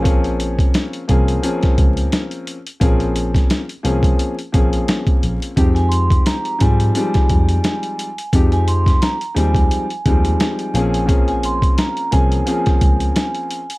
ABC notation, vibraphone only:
X:1
M:4/4
L:1/16
Q:"Swing 16ths" 1/4=87
K:Bbdor
V:1 name="Vibraphone"
z16 | z16 | z a c'2 b2 a8- a2 | z a c'2 b2 a8- a2 |
z a c'2 b2 a8- a2 |]